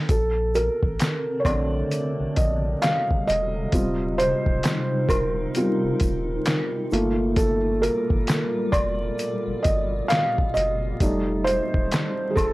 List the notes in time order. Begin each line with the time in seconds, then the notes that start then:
0.09 A#1 C3 D3 C4 A4, kick, closed hi-hat, shaker
0.55 A#4, closed hi-hat, shaker
0.83 A1, kick
0.99 snare, clap, closed hi-hat, shaker
1.40 C#5
1.45 A#1 D3 A3 C4 D5, kick, closed hi-hat, high woodblock, shaker
1.90 G3, closed hi-hat, shaker
2.20 A#1
2.36 A#1 D#5, kick, closed hi-hat, shaker
2.82 F5, snare, clap, closed hi-hat, shaker
3.11 kick
3.27 E1 D#5, closed hi-hat, shaker
3.72 D#1 G3 C4 D#4 F4, kick, closed hi-hat, shaker
4.18 C5, closed hi-hat, shaker
4.46 D1, kick
4.63 snare, clap, closed hi-hat, shaker
5.09 D#1 A#4, kick, closed hi-hat, high woodblock, shaker
5.55 G3 C4 F4, closed hi-hat, shaker
5.83 D#1
6.00 D#1, kick, closed hi-hat, shaker
6.46 snare, clap, closed hi-hat, shaker
6.91 G1 A#2 G3 A3 A#3 F4, closed hi-hat, shaker
7.36 A4, kick, closed hi-hat, shaker
7.82 A#4, closed hi-hat, shaker
8.10 G1, kick
8.27 snare, clap, closed hi-hat, shaker
8.72 F1 G3 D5, kick, closed hi-hat, high woodblock, shaker
9.19 closed hi-hat, shaker
9.47 G1
9.63 G1 D#5, kick, closed hi-hat, shaker
10.08 F5, snare, clap, closed hi-hat, shaker
10.38 kick
10.54 F#1 D#5, closed hi-hat, shaker
11.00 F1 D#3 G3 A3 C4 D#4 D5, kick, closed hi-hat, shaker
11.44 C5, closed hi-hat, shaker
11.74 D#1, kick
11.91 snare, clap, closed hi-hat, shaker
12.31 G#4
12.36 F1 A4, kick, closed hi-hat, high woodblock, shaker